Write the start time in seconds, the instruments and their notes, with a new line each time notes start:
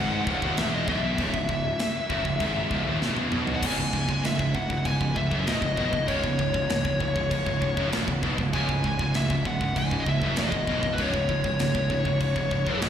Already playing: picked electric bass G#1, distorted electric guitar G#2, pipe organ C#3 E3 G#3 E4 G#4, lead electric guitar F#5
0.27 picked electric bass C#1, distorted electric guitar C#2, kick
0.42 picked electric bass D#1, distorted electric guitar D#2, kick
0.57 picked electric bass E1, distorted electric guitar E2, lead electric guitar E5, snare, crash
0.74 lead electric guitar D#5
0.88 picked electric bass B1, distorted electric guitar B2, lead electric guitar E5, kick
1.18 picked electric bass C#1, distorted electric guitar C#2, kick, crash
1.34 picked electric bass C#1, distorted electric guitar C#2, kick
1.49 picked electric bass C#1, distorted electric guitar C#2, kick
1.79 snare, crash
2.10 picked electric bass F#1, distorted electric guitar F#2, kick
2.25 picked electric bass C#1, distorted electric guitar C#2, kick
2.40 picked electric bass G#1, distorted electric guitar G#2, kick, crash
2.71 picked electric bass C#1, distorted electric guitar C#2, kick
2.86 picked electric bass D#1, distorted electric guitar D#2
3.02 picked electric bass E1, distorted electric guitar E2, snare
3.17 high tom
3.31 picked electric bass B1, distorted electric guitar B2, mid tom
3.47 floor tom
3.56 lead electric guitar F#5
3.62 picked electric bass C#1, distorted electric guitar C#2, pipe organ C#3 E3 G#3 E4 G#4, kick, crash
3.66 lead electric guitar G#5
3.78 picked electric bass C#1, distorted electric guitar C#2, kick
3.93 picked electric bass C#1, distorted electric guitar C#2, kick
4.08 picked electric bass C#1, distorted electric guitar C#2, kick
4.23 picked electric bass C#1, distorted electric guitar C#2, lead electric guitar E5, snare, crash
4.39 picked electric bass C#1, distorted electric guitar C#2, kick
4.55 picked electric bass C#1, distorted electric guitar C#2, lead electric guitar F#5, kick
4.70 picked electric bass C#1, distorted electric guitar C#2, kick
4.78 lead electric guitar F#5
4.85 picked electric bass C#1, distorted electric guitar C#2, lead electric guitar G#5, kick, crash
5.01 picked electric bass C#1, distorted electric guitar C#2, kick
5.16 picked electric bass C#1, distorted electric guitar C#2, lead electric guitar E5, kick
5.31 picked electric bass F#1, distorted electric guitar F#2, kick
5.46 picked electric bass E1, distorted electric guitar E2, lead electric guitar D#5, snare, crash
5.62 picked electric bass C#1, distorted electric guitar C#2, kick
5.77 picked electric bass B1, distorted electric guitar B2, kick
5.92 picked electric bass C#1, distorted electric guitar C#2, kick
6.08 picked electric bass C#1, distorted electric guitar C#2, lead electric guitar C#5, kick, crash
6.24 picked electric bass C#1, distorted electric guitar C#2, kick
6.39 picked electric bass C#1, distorted electric guitar C#2, kick
6.54 picked electric bass C#1, distorted electric guitar C#2, kick
6.69 picked electric bass C#1, distorted electric guitar C#2, snare, crash
6.85 picked electric bass C#1, distorted electric guitar C#2, kick
7.00 picked electric bass C#1, distorted electric guitar C#2, kick
7.16 picked electric bass C#1, distorted electric guitar C#2, kick
7.31 picked electric bass C#1, distorted electric guitar C#2, kick, crash
7.46 picked electric bass C#1, distorted electric guitar C#2, kick
7.61 picked electric bass C#1, distorted electric guitar C#2, kick
7.77 picked electric bass F#1, distorted electric guitar F#2, kick
7.92 picked electric bass E1, distorted electric guitar E2, snare, crash
8.07 picked electric bass C#1, distorted electric guitar C#2, kick
8.23 picked electric bass B1, distorted electric guitar B2, kick
8.38 picked electric bass C#1, distorted electric guitar C#2, kick
8.53 picked electric bass C#1, distorted electric guitar C#2, lead electric guitar G#5, kick, crash
8.69 picked electric bass C#1, distorted electric guitar C#2, kick
8.84 picked electric bass C#1, distorted electric guitar C#2, kick
8.99 picked electric bass C#1, distorted electric guitar C#2, kick
9.14 picked electric bass C#1, distorted electric guitar C#2, lead electric guitar E5, snare, crash
9.30 picked electric bass C#1, distorted electric guitar C#2, kick
9.45 picked electric bass C#1, distorted electric guitar C#2, lead electric guitar F#5, kick
9.61 picked electric bass C#1, distorted electric guitar C#2, kick
9.76 picked electric bass C#1, distorted electric guitar C#2, lead electric guitar G#5, kick, crash
9.91 picked electric bass C#1, distorted electric guitar C#2, kick
10.00 lead electric guitar D#5
10.06 picked electric bass C#1, distorted electric guitar C#2, lead electric guitar E5, kick
10.22 picked electric bass F#1, distorted electric guitar F#2, kick
10.36 picked electric bass E1, distorted electric guitar E2, lead electric guitar D#5, snare, crash
10.52 picked electric bass C#1, distorted electric guitar C#2, kick
10.67 picked electric bass B1, distorted electric guitar B2, kick
10.83 picked electric bass C#1, distorted electric guitar C#2, kick
10.93 lead electric guitar B4
10.98 picked electric bass C#1, distorted electric guitar C#2, lead electric guitar C#5, kick, crash
11.14 picked electric bass C#1, distorted electric guitar C#2, kick
11.29 picked electric bass C#1, distorted electric guitar C#2, kick
11.44 picked electric bass C#1, distorted electric guitar C#2, kick
11.59 picked electric bass C#1, distorted electric guitar C#2, snare, crash
11.75 picked electric bass C#1, distorted electric guitar C#2, kick
11.90 picked electric bass C#1, distorted electric guitar C#2, kick
12.05 picked electric bass C#1, distorted electric guitar C#2, kick
12.21 picked electric bass C#1, distorted electric guitar C#2, kick, crash
12.36 picked electric bass C#1, distorted electric guitar C#2, kick
12.51 picked electric bass C#1, distorted electric guitar C#2, kick
12.67 picked electric bass F#1, distorted electric guitar F#2, kick
12.82 picked electric bass B1, distorted electric guitar B2, snare, crash